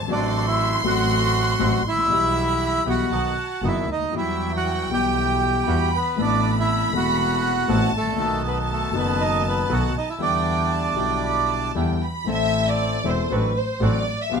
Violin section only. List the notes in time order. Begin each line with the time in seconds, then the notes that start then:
0.09 C6
2.10 B5
3.13 A5
4.14 G5
5.67 B5
6.17 B5
7.69 A5
8.19 A5
10.21 G5
10.72 A5
10.98 G5
11.23 B5
11.50 A5
11.76 G5
12.03 B5
12.30 E5
12.69 D5
13.08 C5
13.33 B4
13.58 C5
13.84 D5
14.22 E5
14.36 F5